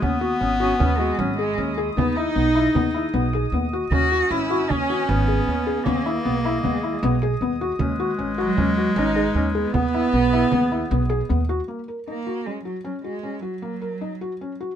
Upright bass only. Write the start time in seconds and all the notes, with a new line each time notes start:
0.03 D#2
0.41 G#1
0.80 D#2
1.19 G#1
1.58 D#2
1.97 D#2
2.36 B1
2.75 D#2
3.14 B1
3.52 D#2
3.91 D#2
4.31 G#1
4.70 D#2
5.09 G#1
5.48 D#2
5.86 D#2
6.26 B1
6.65 D#2
7.03 B1
7.41 D#2
7.79 D#2
8.19 G#1
8.57 D#2
8.96 G#1
9.35 D#2
9.74 D#2
10.13 B1
10.52 D#2
10.91 B1
11.30 D#2